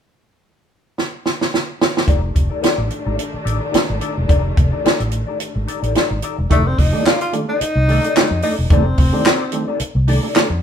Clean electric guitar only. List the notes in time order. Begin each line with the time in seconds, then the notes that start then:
2.07 D#4 G4 A4 D5
2.22 muted clean electric guitar stroke
2.34 muted clean electric guitar stroke
2.50 D#4 G4 A4 D5
2.61 D#4 G4 A4 D5
2.90 muted clean electric guitar stroke
3.06 D#4 G4 A4 D5
3.18 muted clean electric guitar stroke
3.32 muted clean electric guitar stroke
3.44 D#4 G4 A4 D5
3.59 D#4 G4 A4 D5
3.72 D#4 G4 A4 D5
3.88 muted clean electric guitar stroke
4.01 D#4 G4 A4 D5
4.16 muted clean electric guitar stroke
4.28 D#4 G4 A4 D5
4.44 muted clean electric guitar stroke
4.56 muted clean electric guitar stroke
4.72 D#4 G4 A4 D5
4.84 D#4 G4 A4 D5
5.11 muted clean electric guitar stroke
5.27 D#4 G4 A4 D5
5.40 muted clean electric guitar stroke
5.55 muted clean electric guitar stroke
5.68 D#4 G4 A4 D5
5.82 D#4 G4 A4 D5
5.95 D#4 G4 A4 D5
6.11 muted clean electric guitar stroke
6.23 D#4 G4 A4 D5
6.39 muted clean electric guitar stroke
6.51 D#4 G4 A4 D5
6.66 muted clean electric guitar stroke
6.79 muted clean electric guitar stroke
6.94 D#4 G4 A4 D5
7.06 D#4 G4 A4 D5
7.34 muted clean electric guitar stroke
7.49 D#4 G4 A4 D5
7.61 muted clean electric guitar stroke
7.77 muted clean electric guitar stroke
7.89 D#4 G4 A4 D5
8.05 D#4 G4 A4 D5
8.16 D#4 G4 A4 D5
8.32 muted clean electric guitar stroke
8.43 D#4 G4 A4 D5
8.59 muted clean electric guitar stroke
8.71 D#4 G4 A4 D5
8.88 muted clean electric guitar stroke
8.99 muted clean electric guitar stroke
9.14 D#4 G4 A4 D5
9.25 D#4 G4 A4 D5
9.53 muted clean electric guitar stroke
9.68 D#4 G4 A4 D5
9.81 muted clean electric guitar stroke
9.96 muted clean electric guitar stroke
10.07 D#4 G4 A4 D5
10.23 D#4 G4 A4 D5
10.35 D#4 G4 A4 D5
10.50 muted clean electric guitar stroke